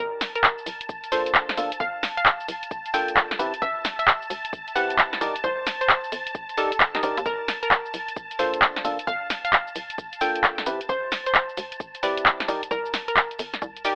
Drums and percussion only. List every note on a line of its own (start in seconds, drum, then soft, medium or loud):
0.21 snare medium
0.21 open hi-hat loud
0.21 shaker medium
0.35 closed hi-hat medium
0.35 shaker soft
0.44 kick loud
0.44 clap loud
0.44 shaker soft
0.58 shaker soft
0.66 open hi-hat loud
0.66 shaker medium
0.81 closed hi-hat medium
0.81 shaker soft
0.89 kick loud
0.89 shaker soft
1.04 closed hi-hat soft
1.04 shaker soft
1.12 open hi-hat loud
1.12 shaker medium
1.26 closed hi-hat medium
1.26 shaker soft
1.35 kick loud
1.35 clap loud
1.35 shaker soft
1.49 snare medium
1.49 closed hi-hat medium
1.57 open hi-hat loud
1.57 shaker medium
1.72 closed hi-hat medium
1.72 shaker soft
1.80 kick loud
1.80 shaker soft
2.03 snare medium
2.03 open hi-hat loud
2.03 shaker medium
2.17 closed hi-hat medium
2.17 shaker soft
2.26 kick loud
2.26 clap loud
2.26 shaker soft
2.40 shaker soft
2.48 open hi-hat loud
2.48 shaker medium
2.63 closed hi-hat medium
2.63 shaker soft
2.71 kick loud
2.71 shaker soft
2.86 closed hi-hat soft
2.86 shaker soft
2.94 open hi-hat loud
2.94 shaker medium
3.08 closed hi-hat medium
3.08 shaker soft
3.17 kick loud
3.17 clap loud
3.17 shaker soft
3.31 snare medium
3.31 closed hi-hat medium
3.39 open hi-hat loud
3.39 shaker medium
3.54 closed hi-hat medium
3.54 shaker soft
3.62 kick loud
3.62 shaker soft
3.85 snare medium
3.85 open hi-hat loud
3.85 shaker medium
3.99 closed hi-hat medium
3.99 shaker soft
4.07 kick loud
4.07 clap loud
4.07 shaker soft
4.22 shaker soft
4.30 open hi-hat loud
4.30 shaker medium
4.45 closed hi-hat medium
4.45 shaker soft
4.53 kick loud
4.53 shaker soft
4.68 closed hi-hat soft
4.68 shaker soft
4.76 open hi-hat medium
4.76 shaker medium
4.90 closed hi-hat medium
4.90 shaker soft
4.98 kick loud
4.98 clap loud
4.98 shaker soft
5.13 snare medium
5.13 closed hi-hat soft
5.21 open hi-hat loud
5.21 shaker medium
5.36 closed hi-hat medium
5.36 shaker soft
5.44 kick loud
5.44 shaker soft
5.67 snare medium
5.67 open hi-hat loud
5.67 shaker medium
5.81 closed hi-hat medium
5.81 shaker soft
5.89 kick loud
5.89 clap loud
5.89 shaker soft
6.04 shaker soft
6.12 open hi-hat medium
6.12 shaker medium
6.27 closed hi-hat medium
6.27 shaker soft
6.35 kick loud
6.35 shaker soft
6.49 closed hi-hat soft
6.49 shaker soft
6.58 open hi-hat loud
6.58 shaker medium
6.72 closed hi-hat medium
6.72 shaker soft
6.80 kick loud
6.80 clap loud
6.80 shaker soft
6.95 snare medium
6.95 closed hi-hat medium
7.03 open hi-hat medium
7.03 shaker medium
7.17 closed hi-hat medium
7.17 shaker soft
7.26 kick loud
7.26 shaker soft
7.48 snare medium
7.48 open hi-hat loud
7.48 shaker medium
7.63 closed hi-hat medium
7.63 shaker soft
7.71 kick loud
7.71 clap loud
7.71 shaker soft
7.86 shaker soft
7.94 open hi-hat loud
7.94 shaker medium
8.08 closed hi-hat medium
8.08 shaker soft
8.16 kick loud
8.16 shaker soft
8.31 closed hi-hat soft
8.31 shaker soft
8.39 open hi-hat loud
8.39 shaker medium
8.54 closed hi-hat medium
8.54 shaker soft
8.62 kick loud
8.62 clap loud
8.62 shaker soft
8.76 snare medium
8.76 closed hi-hat medium
8.85 open hi-hat loud
8.85 shaker medium
8.99 closed hi-hat medium
8.99 shaker soft
9.07 kick loud
9.07 shaker soft
9.30 snare medium
9.30 open hi-hat loud
9.30 shaker medium
9.45 closed hi-hat medium
9.45 shaker soft
9.53 kick loud
9.53 clap loud
9.53 shaker soft
9.67 shaker soft
9.76 open hi-hat loud
9.76 shaker medium
9.90 closed hi-hat medium
9.90 shaker soft
9.98 kick loud
9.98 shaker soft
10.13 closed hi-hat soft
10.13 shaker soft
10.21 open hi-hat loud
10.21 shaker medium
10.35 closed hi-hat medium
10.35 shaker soft
10.44 kick loud
10.44 clap loud
10.44 shaker soft
10.58 snare medium
10.58 closed hi-hat medium
10.66 open hi-hat loud
10.66 shaker medium
10.81 closed hi-hat medium
10.81 shaker soft
10.89 kick loud
10.89 shaker soft
11.12 snare medium
11.12 open hi-hat loud
11.12 shaker medium
11.26 closed hi-hat medium
11.26 shaker soft
11.35 kick loud
11.35 clap loud
11.35 shaker soft
11.49 shaker soft
11.57 open hi-hat loud
11.57 shaker medium
11.72 closed hi-hat medium
11.72 shaker soft
11.80 kick loud
11.80 shaker soft
11.95 closed hi-hat soft
11.95 shaker soft
12.03 open hi-hat loud
12.03 shaker medium
12.17 closed hi-hat medium
12.17 shaker soft
12.26 kick loud
12.26 clap loud
12.26 shaker soft
12.40 snare medium
12.40 closed hi-hat medium
12.48 open hi-hat loud
12.48 shaker medium
12.63 closed hi-hat medium
12.63 shaker soft
12.71 kick loud
12.71 shaker soft
12.86 shaker soft
12.94 snare medium
12.94 open hi-hat loud
12.94 shaker medium
13.08 closed hi-hat medium
13.08 shaker soft
13.16 kick loud
13.16 clap loud
13.16 shaker soft
13.31 closed hi-hat soft
13.31 shaker soft
13.39 open hi-hat loud
13.39 shaker medium
13.54 snare medium
13.54 closed hi-hat medium
13.54 shaker soft
13.62 kick loud
13.62 shaker soft
13.76 closed hi-hat soft
13.76 shaker soft
13.85 open hi-hat loud
13.85 shaker medium